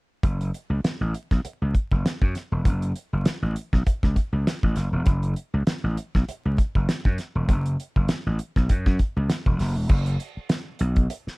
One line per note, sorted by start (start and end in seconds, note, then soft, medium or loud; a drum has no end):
0.23 0.50 F#1 medium
0.23 kick loud
0.23 closed hi-hat medium
0.41 closed hi-hat medium
0.54 closed hi-hat medium
0.70 0.82 C#2 medium
0.84 snare loud
0.84 closed hi-hat medium
1.01 1.12 A1 medium
1.14 closed hi-hat medium
1.31 1.43 B1 medium
1.31 kick medium
1.31 snare soft
1.31 closed hi-hat soft
1.45 muted slap bass stroke soft
1.45 closed hi-hat medium
1.62 1.73 C#2 medium
1.75 kick medium
1.75 closed hi-hat medium
1.91 2.03 F#1 medium
1.91 kick medium
2.06 snare loud
2.06 closed hi-hat loud
2.22 2.33 F#2 medium
2.22 kick medium
2.35 snare soft
2.35 closed hi-hat medium
2.52 2.64 E1 medium
2.65 2.92 F#1 medium
2.65 kick loud
2.65 closed hi-hat medium
2.82 closed hi-hat soft
2.96 closed hi-hat medium
3.13 3.24 F#1 medium
3.25 muted slap bass stroke soft
3.25 snare loud
3.25 closed hi-hat loud
3.42 3.54 A1 medium
3.56 closed hi-hat medium
3.73 3.85 B1 medium
3.73 kick medium
3.73 snare soft
3.86 muted slap bass stroke soft
3.86 kick medium
3.86 closed hi-hat medium
4.03 4.15 C#2 medium
4.03 kick medium
4.03 snare soft
4.16 kick medium
4.16 closed hi-hat medium
4.32 4.45 C#2 medium
4.47 snare loud
4.47 closed hi-hat medium
4.63 4.75 A1 medium
4.63 kick medium
4.76 4.91 F#1 medium
4.76 snare soft
4.76 closed hi-hat medium
4.93 5.05 E1 medium
5.06 5.33 F#1 loud
5.06 kick loud
5.06 closed hi-hat medium
5.23 closed hi-hat soft
5.36 closed hi-hat medium
5.54 5.66 C#2 medium
5.67 snare loud
5.67 closed hi-hat medium
5.84 5.96 A1 medium
5.97 closed hi-hat medium
6.15 6.27 B1 medium
6.15 kick medium
6.15 snare soft
6.28 muted slap bass stroke soft
6.28 closed hi-hat medium
6.45 6.57 C#2 medium
6.58 kick medium
6.58 closed hi-hat medium
6.75 6.87 F#1 medium
6.75 kick medium
6.89 snare loud
6.89 closed hi-hat medium
7.05 7.17 F#2 medium
7.05 kick medium
7.18 snare soft
7.18 closed hi-hat medium
7.35 7.47 E1 medium
7.49 7.75 F#1 loud
7.49 kick loud
7.49 closed hi-hat medium
7.66 closed hi-hat medium
7.80 closed hi-hat medium
7.96 8.08 F#1 medium
7.96 kick medium
8.09 muted slap bass stroke soft
8.09 snare loud
8.09 closed hi-hat medium
8.26 8.38 A1 medium
8.39 closed hi-hat medium
8.56 8.68 B1 medium
8.56 kick medium
8.56 snare soft
8.69 8.85 F#2 medium
8.69 kick medium
8.69 closed hi-hat medium
8.86 8.98 F#2 medium
8.86 kick medium
8.86 snare soft
8.99 kick medium
8.99 closed hi-hat medium
9.16 9.28 C#2 medium
9.30 snare medium
9.30 closed hi-hat loud
9.46 9.58 E1 medium
9.46 kick medium
9.59 9.76 F#1 medium
9.59 snare soft
9.59 open hi-hat medium
9.76 9.88 E1 medium
9.89 10.16 F#1 medium
9.89 kick loud
9.89 crash medium
10.06 closed hi-hat medium
10.20 closed hi-hat medium
10.37 muted slap bass stroke soft
10.49 snare loud
10.49 closed hi-hat medium
10.79 11.06 B1 medium
10.79 closed hi-hat medium
10.96 kick medium
10.96 closed hi-hat soft
11.10 closed hi-hat loud
11.27 muted slap bass stroke soft
11.27 snare soft